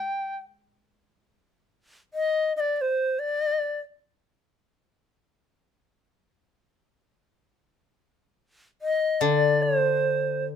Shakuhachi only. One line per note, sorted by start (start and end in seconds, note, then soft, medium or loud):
0.00 0.36 G5 medium
2.14 2.53 D#5 medium
2.56 2.76 D5 medium
2.56 2.61 D#5 medium
2.76 2.82 D5 medium
2.81 3.21 C5 medium
3.19 3.80 D5 medium
8.82 9.22 D#5 medium
9.21 9.64 D5 medium
9.62 10.45 C5 medium